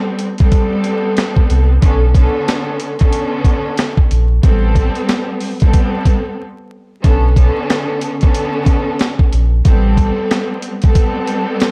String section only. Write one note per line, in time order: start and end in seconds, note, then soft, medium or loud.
0.00 0.28 G3 loud
0.00 0.28 B3 medium
0.00 0.29 C4 loud
0.00 0.29 A4 loud
0.39 1.73 G3 loud
0.39 1.73 B3 medium
0.39 1.74 C4 medium
0.39 1.74 A4 loud
1.80 2.12 D3 medium
1.80 2.13 B3 medium
1.80 2.13 C#4 medium
1.80 2.13 A4 loud
2.13 2.91 D3 loud
2.13 2.92 B3 medium
2.13 2.92 C#4 medium
2.13 2.92 A4 loud
2.98 4.17 D3 loud
2.98 4.17 B3 medium
2.98 4.18 C#4 medium
2.98 4.18 A4 loud
4.43 5.50 G3 loud
4.43 5.50 B3 medium
4.43 5.50 C4 medium
4.43 5.51 A4 loud
5.61 6.39 G3 loud
5.61 6.39 B3 medium
5.61 6.40 C4 medium
5.61 6.40 A4 loud
7.03 7.34 D3 medium
7.03 7.35 B3 medium
7.03 7.35 C#4 medium
7.03 7.35 A4 loud
7.35 8.13 D3 loud
7.35 8.13 B3 medium
7.35 8.14 C#4 medium
7.35 8.14 A4 loud
8.20 9.39 D3 loud
8.20 9.39 B3 medium
8.20 9.40 C#4 medium
8.20 9.40 A4 loud
9.65 10.72 G3 loud
9.65 10.72 B3 medium
9.65 10.72 C4 medium
9.65 10.73 A4 loud
10.82 11.71 G3 loud
10.82 11.71 B3 medium
10.82 11.71 C4 medium
10.82 11.71 A4 loud